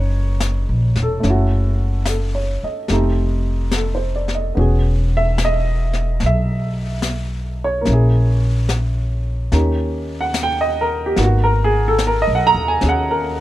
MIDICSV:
0, 0, Header, 1, 5, 480
1, 0, Start_track
1, 0, Key_signature, 5, "minor"
1, 0, Tempo, 827586
1, 715, Time_signature, 4, 2, 24, 8
1, 7774, End_track
2, 0, Start_track
2, 0, Title_t, "Grand piano"
2, 0, Program_c, 0, 0
2, 0, Control_c, 0, 64, 127
2, 0, Note_on_c, 0, 46, 57
2, 0, Note_on_c, 0, 61, 44
2, 0, Note_on_c, 0, 63, 47
2, 0, Note_on_c, 0, 66, 63
2, 0, Note_on_c, 0, 71, 60
2, 0, Note_on_c, 0, 73, 82
2, 549, Note_off_c, 0, 73, 0
2, 594, Note_on_c, 0, 69, 63
2, 696, Note_on_c, 0, 57, 55
2, 706, Note_off_c, 0, 61, 0
2, 715, Note_on_c, 0, 61, 54
2, 719, Note_off_c, 0, 46, 0
2, 721, Note_off_c, 0, 63, 0
2, 722, Control_c, 0, 64, 0
2, 725, Note_off_c, 0, 66, 0
2, 727, Note_off_c, 0, 71, 0
2, 735, Note_on_c, 0, 64, 54
2, 755, Note_on_c, 0, 66, 59
2, 840, Control_c, 0, 64, 127
2, 1188, Note_off_c, 0, 69, 0
2, 1204, Note_on_c, 0, 69, 46
2, 1362, Note_on_c, 0, 73, 45
2, 1505, Note_off_c, 0, 69, 0
2, 1533, Note_on_c, 0, 75, 46
2, 1610, Note_off_c, 0, 73, 0
2, 1667, Note_off_c, 0, 57, 0
2, 1677, Note_off_c, 0, 61, 0
2, 1683, Control_c, 0, 64, 0
2, 1685, Note_on_c, 0, 57, 57
2, 1687, Note_off_c, 0, 64, 0
2, 1690, Note_on_c, 0, 60, 50
2, 1692, Note_on_c, 0, 67, 60
2, 1693, Note_on_c, 0, 63, 51
2, 1697, Note_off_c, 0, 66, 0
2, 1776, Note_off_c, 0, 75, 0
2, 1780, Control_c, 0, 64, 127
2, 2178, Note_on_c, 0, 69, 43
2, 2290, Note_on_c, 0, 72, 46
2, 2401, Note_off_c, 0, 69, 0
2, 2410, Note_on_c, 0, 74, 47
2, 2496, Note_off_c, 0, 72, 0
2, 2522, Note_on_c, 0, 75, 45
2, 2555, Note_off_c, 0, 74, 0
2, 2638, Note_on_c, 0, 59, 50
2, 2649, Note_on_c, 0, 61, 45
2, 2650, Note_off_c, 0, 57, 0
2, 2652, Note_off_c, 0, 60, 0
2, 2653, Note_off_c, 0, 67, 0
2, 2654, Note_off_c, 0, 63, 0
2, 2654, Control_c, 0, 64, 0
2, 2659, Note_on_c, 0, 66, 46
2, 2665, Note_on_c, 0, 68, 58
2, 2691, Note_off_c, 0, 75, 0
2, 2762, Control_c, 0, 64, 127
2, 2998, Note_on_c, 0, 76, 90
2, 3134, Note_off_c, 0, 76, 0
2, 3160, Note_on_c, 0, 75, 74
2, 3599, Note_off_c, 0, 75, 0
2, 3632, Note_on_c, 0, 76, 85
2, 4402, Note_off_c, 0, 76, 0
2, 4434, Note_on_c, 0, 73, 73
2, 4532, Note_on_c, 0, 58, 57
2, 4551, Note_off_c, 0, 61, 0
2, 4559, Note_on_c, 0, 61, 51
2, 4561, Note_off_c, 0, 59, 0
2, 4572, Note_off_c, 0, 66, 0
2, 4573, Control_c, 0, 64, 0
2, 4575, Note_off_c, 0, 68, 0
2, 4578, Note_on_c, 0, 64, 49
2, 4602, Note_on_c, 0, 68, 60
2, 4682, Control_c, 0, 64, 127
2, 5033, Note_off_c, 0, 73, 0
2, 5507, Note_off_c, 0, 58, 0
2, 5519, Note_off_c, 0, 61, 0
2, 5526, Note_on_c, 0, 58, 55
2, 5527, Note_on_c, 0, 61, 50
2, 5530, Note_off_c, 0, 64, 0
2, 5531, Control_c, 0, 64, 0
2, 5531, Note_on_c, 0, 63, 47
2, 5533, Note_on_c, 0, 67, 58
2, 5542, Note_off_c, 0, 68, 0
2, 5624, Control_c, 0, 64, 127
2, 5919, Note_on_c, 0, 78, 74
2, 5997, Note_off_c, 0, 78, 0
2, 6049, Note_on_c, 0, 79, 92
2, 6153, Note_on_c, 0, 75, 76
2, 6185, Note_off_c, 0, 79, 0
2, 6270, Note_on_c, 0, 70, 79
2, 6317, Note_off_c, 0, 75, 0
2, 6372, Note_off_c, 0, 70, 0
2, 6407, Note_off_c, 0, 67, 0
2, 6415, Note_on_c, 0, 67, 77
2, 6472, Note_off_c, 0, 58, 0
2, 6477, Note_off_c, 0, 63, 0
2, 6480, Note_on_c, 0, 59, 43
2, 6481, Note_on_c, 0, 58, 46
2, 6483, Note_off_c, 0, 61, 0
2, 6484, Note_off_c, 0, 67, 0
2, 6486, Note_on_c, 0, 63, 43
2, 6488, Note_on_c, 0, 66, 51
2, 6489, Control_c, 0, 64, 0
2, 6511, Note_off_c, 0, 66, 0
2, 6519, Note_on_c, 0, 66, 71
2, 6586, Control_c, 0, 64, 127
2, 6632, Note_on_c, 0, 70, 87
2, 6658, Note_off_c, 0, 66, 0
2, 6753, Note_on_c, 0, 68, 86
2, 6795, Note_off_c, 0, 70, 0
2, 6852, Note_off_c, 0, 68, 0
2, 6890, Note_on_c, 0, 69, 79
2, 6960, Note_off_c, 0, 69, 0
2, 7002, Note_on_c, 0, 70, 79
2, 7085, Note_off_c, 0, 70, 0
2, 7087, Note_on_c, 0, 75, 83
2, 7126, Note_off_c, 0, 75, 0
2, 7163, Note_on_c, 0, 78, 75
2, 7231, Note_on_c, 0, 82, 114
2, 7301, Note_off_c, 0, 78, 0
2, 7330, Note_off_c, 0, 82, 0
2, 7356, Note_on_c, 0, 80, 80
2, 7430, Note_on_c, 0, 61, 48
2, 7431, Note_off_c, 0, 80, 0
2, 7440, Note_on_c, 0, 66, 38
2, 7447, Note_on_c, 0, 68, 50
2, 7475, Note_on_c, 0, 78, 82
2, 7603, Note_on_c, 0, 70, 76
2, 7613, Note_off_c, 0, 78, 0
2, 7700, Note_off_c, 0, 70, 0
2, 7774, Note_off_c, 0, 58, 0
2, 7774, Note_off_c, 0, 59, 0
2, 7774, Note_off_c, 0, 61, 0
2, 7774, Note_off_c, 0, 63, 0
2, 7774, Note_off_c, 0, 66, 0
2, 7774, Note_off_c, 0, 68, 0
2, 7774, End_track
3, 0, Start_track
3, 0, Title_t, "Upright bass"
3, 0, Program_c, 1, 32
3, 0, Note_on_c, 1, 30, 80
3, 373, Note_off_c, 1, 30, 0
3, 399, Note_on_c, 1, 34, 61
3, 546, Note_off_c, 1, 34, 0
3, 556, Note_on_c, 1, 28, 70
3, 704, Note_off_c, 1, 28, 0
3, 718, Note_on_c, 1, 30, 80
3, 1501, Note_off_c, 1, 30, 0
3, 1681, Note_on_c, 1, 29, 70
3, 2624, Note_off_c, 1, 29, 0
3, 2650, Note_on_c, 1, 28, 81
3, 3585, Note_off_c, 1, 28, 0
3, 3607, Note_on_c, 1, 35, 77
3, 4542, Note_off_c, 1, 35, 0
3, 4566, Note_on_c, 1, 34, 84
3, 5501, Note_off_c, 1, 34, 0
3, 5523, Note_on_c, 1, 39, 80
3, 6457, Note_off_c, 1, 39, 0
3, 6480, Note_on_c, 1, 32, 86
3, 7092, Note_off_c, 1, 32, 0
3, 7119, Note_on_c, 1, 35, 61
3, 7265, Note_off_c, 1, 35, 0
3, 7275, Note_on_c, 1, 39, 67
3, 7424, Note_off_c, 1, 39, 0
3, 7440, Note_on_c, 1, 39, 82
3, 7774, Note_off_c, 1, 39, 0
3, 7774, End_track
4, 0, Start_track
4, 0, Title_t, "Muted upright bass strokes"
4, 1525, Note_on_c, 9, 29, 34
4, 1583, Note_off_c, 9, 29, 0
4, 7774, End_track
5, 0, Start_track
5, 0, Title_t, "Drums"
5, 234, Note_on_c, 9, 38, 46
5, 234, Note_on_c, 9, 44, 62
5, 292, Note_off_c, 9, 38, 0
5, 292, Note_off_c, 9, 44, 0
5, 554, Note_on_c, 9, 38, 26
5, 612, Note_off_c, 9, 38, 0
5, 715, Note_on_c, 9, 25, 42
5, 715, Note_on_c, 9, 38, 27
5, 773, Note_off_c, 9, 38, 0
5, 1192, Note_on_c, 9, 38, 49
5, 1192, Note_on_c, 9, 44, 55
5, 1250, Note_off_c, 9, 38, 0
5, 1250, Note_off_c, 9, 44, 0
5, 1672, Note_off_c, 9, 25, 0
5, 1672, Note_on_c, 9, 25, 39
5, 1672, Note_on_c, 9, 38, 28
5, 1730, Note_off_c, 9, 38, 0
5, 2154, Note_on_c, 9, 38, 47
5, 2154, Note_on_c, 9, 44, 58
5, 2212, Note_off_c, 9, 38, 0
5, 2212, Note_off_c, 9, 44, 0
5, 2483, Note_on_c, 9, 38, 26
5, 2541, Note_off_c, 9, 38, 0
5, 2641, Note_off_c, 9, 25, 0
5, 2641, Note_on_c, 9, 25, 34
5, 3121, Note_on_c, 9, 38, 51
5, 3121, Note_on_c, 9, 44, 50
5, 3179, Note_off_c, 9, 38, 0
5, 3179, Note_off_c, 9, 44, 0
5, 3442, Note_on_c, 9, 38, 26
5, 3500, Note_off_c, 9, 38, 0
5, 3596, Note_off_c, 9, 25, 0
5, 3596, Note_on_c, 9, 25, 32
5, 3596, Note_on_c, 9, 38, 27
5, 3654, Note_off_c, 9, 38, 0
5, 4073, Note_on_c, 9, 38, 46
5, 4073, Note_on_c, 9, 44, 52
5, 4131, Note_off_c, 9, 38, 0
5, 4131, Note_off_c, 9, 44, 0
5, 4555, Note_off_c, 9, 25, 0
5, 4555, Note_on_c, 9, 25, 39
5, 4555, Note_on_c, 9, 38, 32
5, 4613, Note_off_c, 9, 38, 0
5, 5039, Note_on_c, 9, 38, 49
5, 5039, Note_on_c, 9, 44, 52
5, 5097, Note_off_c, 9, 38, 0
5, 5097, Note_off_c, 9, 44, 0
5, 5521, Note_off_c, 9, 25, 0
5, 5521, Note_on_c, 9, 25, 35
5, 5521, Note_on_c, 9, 38, 29
5, 5579, Note_off_c, 9, 38, 0
5, 5997, Note_on_c, 9, 38, 50
5, 5997, Note_on_c, 9, 44, 53
5, 6055, Note_off_c, 9, 38, 0
5, 6055, Note_off_c, 9, 44, 0
5, 6475, Note_off_c, 9, 25, 0
5, 6475, Note_on_c, 9, 25, 38
5, 6475, Note_on_c, 9, 38, 33
5, 6533, Note_off_c, 9, 38, 0
5, 6951, Note_on_c, 9, 38, 48
5, 6951, Note_on_c, 9, 44, 49
5, 7009, Note_off_c, 9, 38, 0
5, 7009, Note_off_c, 9, 44, 0
5, 7430, Note_off_c, 9, 25, 0
5, 7430, Note_on_c, 9, 25, 33
5, 7430, Note_on_c, 9, 38, 30
5, 7488, Note_off_c, 9, 38, 0
5, 7774, Note_off_c, 9, 25, 0
5, 7774, End_track
0, 0, End_of_file